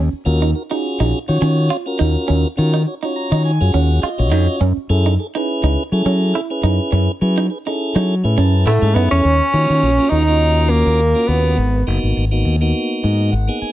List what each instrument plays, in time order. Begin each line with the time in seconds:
Already playing: fingered electric bass D#2, clean electric guitar C#4
0.13 muted fingered electric bass stroke
0.25 fingered electric bass D#2, tonewheel organ C#4 F4 F#4 A#4
0.42 clean electric guitar D#4
0.54 tonewheel organ F#4 A#4
0.70 tonewheel organ C#4 F4 F#4 G#4, clean electric guitar D#4
1.00 fingered electric bass A#1, clean electric guitar D#4
1.28 fingered electric bass D#3, tonewheel organ C#4 F4 F#4 C#5
1.41 fingered electric bass D#3, clean electric guitar C#4
1.70 clean electric guitar F4
1.86 tonewheel organ C#4 F4 F#4 A#4
1.99 fingered electric bass D#2, clean electric guitar D#4
2.28 fingered electric bass D#2, clean electric guitar C#4
2.57 fingered electric bass D#3, tonewheel organ C#4 F4 F#4 A#4
2.74 clean electric guitar D#4
2.87 tonewheel organ F#4 C#5
3.03 tonewheel organ C#4 F4 F#4 C#5, clean electric guitar D#4
3.16 tonewheel organ A#5
3.31 fingered electric bass D#3, clean electric guitar D#4
3.45 tonewheel organ G#5
3.61 fingered electric bass F#2, tonewheel organ C#4 F4 F#4 G#4
3.73 fingered electric bass D#2, clean electric guitar C#4, tonewheel organ F#5
4.02 clean electric guitar F4, tonewheel organ D#5, muted fingered electric bass stroke
4.18 fingered electric bass A#1, tonewheel organ C#4 F4 F#4 C#5
4.31 fingered electric bass F2, clean electric guitar D#4
4.60 fingered electric bass F#2, clean electric guitar C#4
4.77 muted fingered electric bass stroke
4.89 fingered electric bass F#2, tonewheel organ C#4 E4 G#4 A4
5.06 clean electric guitar D#4
5.19 tonewheel organ G#4 A4
5.35 tonewheel organ C#4 E4 G#4 B4, clean electric guitar D#4
5.63 fingered electric bass C#2, clean electric guitar D#4
5.92 fingered electric bass F#3, tonewheel organ C#4 E4 G#4 A4
6.05 fingered electric bass F#3, clean electric guitar C#4
6.35 clean electric guitar E4
6.50 tonewheel organ C#4 E4 G#4 B4
6.63 fingered electric bass F#2, clean electric guitar D#4
6.92 fingered electric bass F#2, clean electric guitar C#4
7.21 fingered electric bass F#3, tonewheel organ C#4 E4 G#4 B4
7.38 clean electric guitar D#4
7.50 tonewheel organ G#4 B4
7.66 tonewheel organ C#4 E4 G#4 A4, clean electric guitar D#4
7.95 fingered electric bass F#3, clean electric guitar D#4
8.24 fingered electric bass A2, tonewheel organ C#4 E4 G#4 B4
8.37 fingered electric bass F#2, clean electric guitar C#4, tonewheel organ A5
8.66 fingered electric bass A2, tenor saxophone A3, trombone A3, clean electric guitar E4, tonewheel organ F#5
8.82 fingered electric bass G#2, tonewheel organ C#4 E4 G#4 A4 E5
8.95 fingered electric bass F#2, tenor saxophone B3, trombone B3, clean electric guitar D#4
9.11 fingered electric bass E2, tenor saxophone C#4, trombone C#4
9.25 fingered electric bass D#2
9.53 fingered electric bass D#3, tonewheel organ A#3 C#4 F4 F#4
9.70 fingered electric bass D#3
9.83 fingered electric bass A#1
9.98 tonewheel organ A#3 C#4 F4 F#4
10.10 fingered electric bass D#2, tenor saxophone D#4, trombone D#4
10.27 tonewheel organ A#3 C#4 F4 F#4
10.70 tenor saxophone A#3, trombone A#3
10.86 fingered electric bass D#2
11.15 tonewheel organ A#3 C#4 F4 F#4
11.28 fingered electric bass D#2, tenor saxophone B3, trombone B3
11.58 fingered electric bass G#1
11.87 fingered electric bass F#1, tonewheel organ A#3 B3 D#4 F#4
12.03 fingered electric bass G#1
12.17 fingered electric bass G#1
12.31 tonewheel organ A#3 B3 D#4 F#4
12.45 fingered electric bass D#2
12.61 tonewheel organ A#3 B3 D#4 F#4
13.03 fingered electric bass G#2, tonewheel organ D#5
13.32 fingered electric bass G#1, tonewheel organ F#5
13.48 tonewheel organ A#3 B3 D#4 G#4
13.62 tonewheel organ G#5, muted fingered electric bass stroke